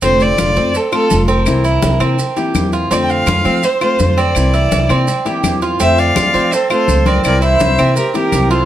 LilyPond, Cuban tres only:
\new Staff \with { instrumentName = "Cuban tres" } { \time 4/4 \key f \major \tempo 4 = 166 c'4 f'8 c'4 f'4 c'8~ | c'8 e'4 c'4 g'4 f'8 | c'4 f'8 c'4 f'4 c'8~ | c'8 e'4 c'4 g'4 f'8 |
c'4 f'8 c'4 f'4 c'8~ | c'8 e'4 c'4 g'4 f'8 | }